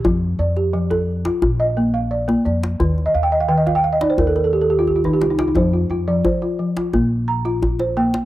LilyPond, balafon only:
<<
  \new Staff \with { instrumentName = "Balafon" } { \time 4/4 \key f \mixolydian \tempo 4 = 87 << { g'16 r16 d''16 g'8 a'8. r16 ees''8 f''16 d''8 d''8~ | d''16 r2. r8. | c''16 f'16 f'16 d''16 c''16 f'8 f'8 r16 bes''8. c''16 g''8 | } \\ { r1 | r16. ees''32 f''32 g''32 ees''32 f''32 g''32 ees''32 f''32 g''32 f''32 ees''32 d''32 c''32 bes'32 a'32 bes'32 a'16 a'32 g'32 f'32 g'32 f'32 ees'32 g'32 f'32 ees'32 f'32 ees'32~ | ees'32 r2. r8. r32 | } >> }
  \new Staff \with { instrumentName = "Balafon" } { \clef bass \time 4/4 \key f \mixolydian f8 r8 f8 r16 f'16 r8 bes8 r16 bes8 r16 | ees8 r8 ees8 r16 ees'8 r16 g'8 r16 ees8 r16 | f8 r16 f8 r16 f8 bes8 r16 f'8 r16 bes8 | }
>>